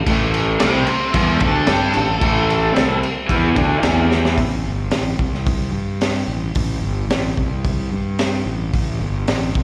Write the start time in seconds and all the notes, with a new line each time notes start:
0.07 A1 A2 E3 A3, kick, crash
0.34 crash
0.60 C2 C3 G3 C4 E5 G5, snare, crash
0.86 G4 E5, crash
1.13 E2 E3 B3 E4 C5, kick, crash
1.40 D2 D3 A3 D4 A4, kick, crash
1.67 G2 G3 D4 G4, snare, crash
1.94 A1 A2 E3, crash
2.20 A1 A2 E3 A3, kick, crash
2.50 crash
2.73 C3 G3 C4, crash
2.77 C2, snare
3.03 crash
3.27 E2 E3 B3 E4, kick, crash
3.55 D2 D3 A3 D4, kick, crash
3.79 E3 B3 E4
3.83 E2, snare, crash
4.11 snare
4.25 snare
4.37 A1, kick, open hi-hat
4.66 G1
4.91 A1, snare, open hi-hat
5.19 C2, kick
5.34 snare
5.46 kick, open hi-hat
5.71 G2
6.01 snare, open hi-hat
6.28 A1
6.55 A1, kick, open hi-hat
6.81 G1
7.08 A1, snare, open hi-hat
7.37 C2, kick
7.64 kick, open hi-hat
7.91 G2
8.19 snare, open hi-hat
8.46 A1
8.74 A1, kick, open hi-hat
9.00 G1
9.28 A1, snare, open hi-hat
9.55 C2, kick